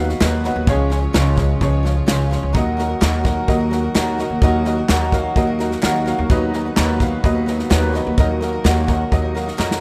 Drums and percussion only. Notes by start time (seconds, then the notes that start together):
0.09 snare
0.21 snare, clap
0.44 snare
0.67 kick, snare
0.91 snare
1.14 snare, clap
1.38 kick, snare
1.61 kick, snare
1.85 snare
2.08 snare, clap
2.32 snare
2.55 kick, snare
2.79 snare
3.02 snare, clap
3.25 kick, snare
3.48 kick, snare
3.72 snare
3.95 snare, clap
4.19 snare
4.42 kick, snare
4.65 snare
4.89 snare, clap
5.12 kick, snare
5.36 kick, snare
5.59 snare
5.71 snare
5.82 snare, clap
6.06 snare
6.30 kick, snare
6.53 snare
6.77 snare, clap
7.00 kick, snare
7.24 kick, snare
7.47 snare
7.59 snare
7.71 snare, clap
7.94 snare
8.17 kick, snare
8.42 snare
8.65 snare, clap
8.88 kick, snare
9.12 kick, snare
9.36 snare
9.48 snare
9.59 snare, clap
9.71 snare